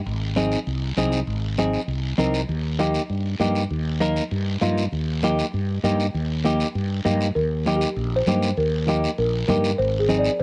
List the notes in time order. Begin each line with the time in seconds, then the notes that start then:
0.06 G#1, high conga, long guiro
0.36 C4 D#4 G#4, high conga, short guiro
0.52 short guiro
0.67 C2, high conga, long guiro
0.97 C2 C4 D#4 G#4, high conga, short guiro
1.12 short guiro
1.27 G#1, high conga, long guiro
1.58 C4 D#4 G#4, high conga, short guiro
1.74 short guiro
1.88 C2, high conga, long guiro
2.18 C2 C4 D#4 A#4, high conga, short guiro
2.34 short guiro
2.49 D#2, high conga, long guiro
2.79 A#3 D#4 G4, high conga, short guiro
2.94 short guiro
3.10 G2, high conga, long guiro
3.40 G2 A#3 D#4 G4, high conga, short guiro
3.55 short guiro
3.70 D#2, high conga, long guiro
4.00 A#3 D#4 A#4, high conga, short guiro
4.16 short guiro
4.31 G2, high conga, long guiro
4.61 G2 A#3 D#4 F4, high conga, short guiro
4.78 short guiro
4.92 D#2, high conga, long guiro
5.23 A#3 D#4 G4, high conga, short guiro
5.39 short guiro
5.53 G2, high conga, long guiro
5.83 G2 A#3 D#4 G4, high conga, short guiro
6.00 short guiro
6.14 D#2, high conga, long guiro
6.45 A#3 D#4 G4, high conga, short guiro
6.60 short guiro
6.75 G2, high conga, long guiro
7.05 G2 A#3 D#4 G4, high conga, short guiro
7.21 short guiro
7.35 D#2 A#4, high conga, long guiro
7.66 A#3 D#4 G4, high conga, short guiro
7.76 G4
7.81 short guiro
7.96 A#1, high conga, long guiro
8.16 C5
8.27 G2 A#3 D#4 G4, high conga, short guiro
8.42 short guiro
8.57 D#2 A#4, high conga, long guiro
8.88 A#3 D#4 G4, high conga, short guiro
9.04 short guiro
9.18 A#1 A#4, high conga, long guiro
9.48 G2 A#3 D#4 G4 A#4, high conga, low conga, short guiro
9.64 short guiro
9.78 G#1 C5, high conga, long guiro
9.99 G#4
10.09 C4 D#4 G#4, high conga, short guiro
10.19 D5
10.24 short guiro
10.40 C5, high conga, long guiro